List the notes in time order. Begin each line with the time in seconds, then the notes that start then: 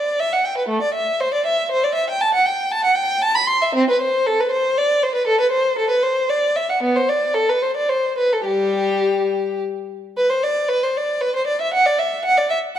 Already playing: D5
0.20 E5
0.33 F#5
0.45 G5
0.57 B4
0.69 A3
0.82 D5
0.94 E5
1.21 C5
1.34 D5
1.46 E5
1.71 C5
1.84 D5
1.95 E5
2.10 G5
2.21 A5
2.34 F#5
2.46 G5
2.72 A5
2.85 F#5
2.95 G5
3.22 A5
3.35 B5
3.47 C6
3.62 E5
3.75 C4
3.90 B4
4.01 C5
4.26 A4
4.40 B4
4.51 C5
4.77 D5
5.03 C5
5.15 B4
5.27 A4
5.40 B4
5.52 C5
5.78 A4
5.90 B4
6.03 C5
6.29 D5
6.56 E5
6.70 F#5
6.83 B3
6.96 C5
7.09 D5
7.34 A4
7.49 B4
7.62 C5
7.76 D5
7.89 C5
8.18 B4
8.33 A4
8.46 G3 G4
10.17 B4
10.30 C5
10.43 D5
10.69 B4
10.83 C5
10.97 D5
11.21 B4
11.36 C5
11.47 D5
11.61 E5
11.74 F#5
11.86 D5
11.99 E5
12.25 F#5
12.37 D5
12.50 E5
12.76 F#5